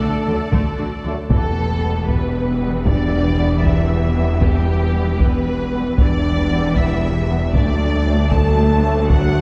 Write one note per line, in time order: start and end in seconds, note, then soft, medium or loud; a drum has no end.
0.00 0.09 D2 soft
0.00 0.08 D3 soft
0.00 0.52 A3 medium
0.00 1.27 A3 loud
0.00 1.31 F#4 medium
0.00 0.08 F#4 soft
0.00 0.51 A4 medium
0.00 1.06 A4 medium
0.00 1.26 A4 loud
0.00 1.07 D5 medium
0.00 1.27 A5 loud
0.26 0.35 D2 soft
0.26 0.35 D3 soft
0.26 0.35 F#3 medium
0.26 0.36 A3 soft
0.26 0.34 D4 soft
0.52 0.61 D2 medium
0.52 0.60 D3 medium
0.52 0.77 A3 medium
0.52 taiko medium
0.78 0.86 D2 soft
0.78 0.87 D3 soft
0.78 0.86 F#4 soft
1.04 1.13 D2 soft
1.04 1.12 D3 soft
1.04 1.14 F#3 medium
1.04 1.14 A3 medium
1.04 1.12 D4 soft
1.30 5.93 E1 medium
1.30 5.93 E2 medium
1.30 5.93 E3 medium
1.30 5.93 G3 medium
1.30 2.04 A3 medium
1.30 5.93 B3 medium
1.30 2.04 A4 medium
1.30 taiko medium
1.81 1.91 G3 medium
1.81 1.91 B3 soft
2.08 2.86 B3 soft
2.08 2.86 B4 medium
2.08 taiko medium
2.60 2.69 G3 medium
2.60 2.69 B3 soft
2.85 3.62 D4 medium
2.85 3.62 D5 medium
2.85 taiko medium
3.38 3.47 G3 medium
3.38 3.47 B3 soft
3.64 4.41 E4 medium
3.64 4.41 E5 medium
3.64 taiko medium
4.17 4.25 G3 medium
4.17 4.25 B3 medium
4.41 5.19 G3 medium
4.41 5.19 G4 medium
4.41 taiko medium
4.94 5.03 G3 medium
4.94 5.03 B3 medium
5.19 5.97 B3 medium
5.19 5.97 B4 medium
5.19 taiko medium
5.72 5.81 G3 medium
5.72 5.81 B3 medium
5.98 7.51 E1 medium
5.98 7.51 E2 medium
5.98 7.50 E3 medium
5.98 7.49 G3 medium
5.98 7.49 B3 medium
5.98 6.74 D4 medium
5.98 6.76 D5 medium
5.98 taiko medium
6.52 6.60 G3 medium
6.52 6.60 B3 medium
6.76 7.54 E4 medium
6.76 7.54 E5 medium
6.76 taiko medium
7.29 7.38 G3 medium
7.29 7.37 B3 medium
7.54 9.41 D2 medium
7.54 9.41 F#3 medium
7.54 9.41 A3 medium
7.54 8.30 D4 medium
7.54 9.41 D4 medium
7.54 8.30 D5 medium
7.54 taiko medium
8.06 8.15 F#3 medium
8.06 8.15 A3 medium
8.31 9.07 A4 medium
8.31 9.09 A5 medium
8.31 taiko medium
8.82 8.91 F#3 medium
8.82 8.92 A3 medium
9.09 9.41 F#4 medium
9.09 9.41 F#5 medium
9.09 taiko medium